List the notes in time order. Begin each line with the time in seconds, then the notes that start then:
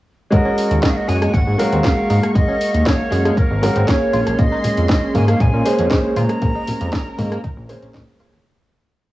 0.31 G#1 G#3 A#3 C#4 F#4 A#4 D#5 C#6, kick, closed hi-hat
0.45 C#4
0.58 open hi-hat
0.71 D#2, closed hi-hat
0.83 D#5, kick, snare, closed hi-hat
0.90 F5
0.97 D#5
1.08 F#2 G#3 G#5, open hi-hat
1.21 G#3, cross-stick, closed hi-hat
1.34 G#1 C#4 F#5, kick, closed hi-hat
1.47 G#2
1.58 F#3 G#3 C#4 F#4 A#4 F5, open hi-hat
1.72 D#2 C4, closed hi-hat
1.83 F#3 G#3 F#4 A#4, kick, snare, closed hi-hat
2.10 G#2 D#4, open hi-hat
2.23 cross-stick, closed hi-hat
2.35 G#1 G#3 D#5 F5, kick, closed hi-hat
2.48 C#4
2.61 open hi-hat
2.74 D#2, closed hi-hat
2.86 C#5, kick, snare, closed hi-hat
3.12 F#2 G#3, open hi-hat
3.25 G#3, cross-stick, closed hi-hat
3.37 C#4 A#4, kick, closed hi-hat
3.51 G#1
3.62 F#3 G#3 C#4 F#4 A#4, open hi-hat
3.76 G#1 C4, closed hi-hat
3.87 F#3 A#3 C#4 G#4 C#5, kick, snare, closed hi-hat
4.13 A#1 G#3 C#4 F4 C6, open hi-hat
4.27 A#1, cross-stick, closed hi-hat
4.39 A#1 A#3 D#5, kick, closed hi-hat
4.52 D#4
4.64 open hi-hat, low conga
4.78 F2, closed hi-hat
4.89 D#5, kick, snare, closed hi-hat
5.14 G#2 A#3 G#5, open hi-hat, high conga, low conga
5.28 A#3 F5, cross-stick, closed hi-hat
5.40 A#1 D#4 G#5, kick, closed hi-hat
5.54 A#2
5.65 G#3 A#3 C#4 G#4 C5, open hi-hat
5.79 F2 C#4, closed hi-hat
5.90 G#3 A#3 C#4 G#4 C5, kick, snare, closed hi-hat
6.16 A#2 F4 A#4 A#5, open hi-hat, high conga
6.29 cross-stick, closed hi-hat
6.42 A#1 A#3, kick, closed hi-hat
6.55 D#4
6.68 open hi-hat, low conga
6.81 F2, closed hi-hat
6.93 kick, snare, closed hi-hat
7.18 G#2 A#3, open hi-hat, high conga, low conga
7.32 A#3, cross-stick, closed hi-hat
7.44 D#4, kick, closed hi-hat, high conga
7.57 A#1
7.69 G#3 A#3 C#4 G#4 C5, open hi-hat, high conga
7.82 A#1 C#4, closed hi-hat
7.94 A#2 G#3, kick, snare, closed hi-hat
8.20 A#3 C#4 F4 G#4 C#5, open hi-hat
8.33 cross-stick, closed hi-hat, high conga